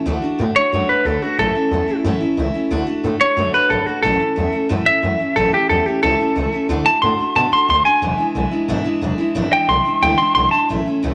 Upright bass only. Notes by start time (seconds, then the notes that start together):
0.06 D2
0.23 muted upright bass stroke
0.39 A2
0.56 muted upright bass stroke
0.73 F#2
0.89 muted upright bass stroke
1.05 D2
1.38 A1
1.55 muted upright bass stroke
1.71 E2
1.87 muted upright bass stroke
2.04 F#2
2.21 muted upright bass stroke
2.37 C#2
2.54 muted upright bass stroke
2.71 D2
3.04 A2
3.21 muted upright bass stroke
3.37 F#2
3.54 muted upright bass stroke
3.70 G#1
3.87 muted upright bass stroke
4.04 A1
4.20 muted upright bass stroke
4.37 E2
4.53 muted upright bass stroke
4.70 F#2
4.87 muted upright bass stroke
5.03 F#2
5.36 A1
5.53 muted upright bass stroke
5.70 E2
5.86 muted upright bass stroke
6.03 C#2
6.36 C#2
6.69 D2
7.03 A2
7.19 muted upright bass stroke
7.36 B2
7.52 muted upright bass stroke
7.69 D2
8.02 E1
8.18 muted upright bass stroke
8.35 B1
8.51 muted upright bass stroke
8.68 G#1
8.84 muted upright bass stroke
9.01 E1
9.35 G#1
9.52 muted upright bass stroke
9.68 B1
10.02 D2
10.19 muted upright bass stroke
10.36 B1
10.70 A1
11.03 C#2